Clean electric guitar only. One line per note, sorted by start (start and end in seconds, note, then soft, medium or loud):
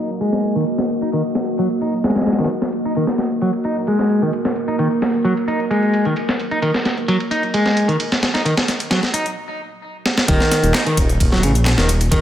0.21 0.55 G#3 medium
0.56 0.63 D#3 medium
1.02 1.09 D#4 medium
1.13 1.21 D#3 medium
1.59 1.66 F#3 medium
1.82 1.93 D#4 medium
2.05 2.38 G#3 medium
2.39 2.46 D#3 medium
2.85 2.92 D#4 medium
2.97 3.04 D#3 medium
3.42 3.49 F#3 medium
3.65 3.76 D#4 medium
3.88 4.21 G#3 medium
4.22 4.29 D#3 medium
4.68 4.75 D#4 medium
4.79 4.87 D#3 medium
5.25 5.32 F#3 medium
5.48 5.59 D#4 medium
5.71 6.04 G#3 medium
6.06 6.13 D#3 medium
6.51 6.58 D#4 medium
6.62 6.70 D#3 medium
7.08 7.16 F#3 medium
7.31 7.42 D#4 medium
7.54 7.88 G#3 medium
7.88 7.96 D#3 medium
8.34 8.41 D#4 medium
8.45 8.53 D#3 medium
8.91 8.99 F#3 medium
9.14 9.25 D#4 medium
10.28 10.73 D#3 medium
10.75 10.82 D#4 medium
10.86 10.97 D#3 medium
11.32 11.42 F#3 medium
11.43 11.51 C#3 medium
11.78 11.88 D#3 medium
12.11 12.21 D#3 medium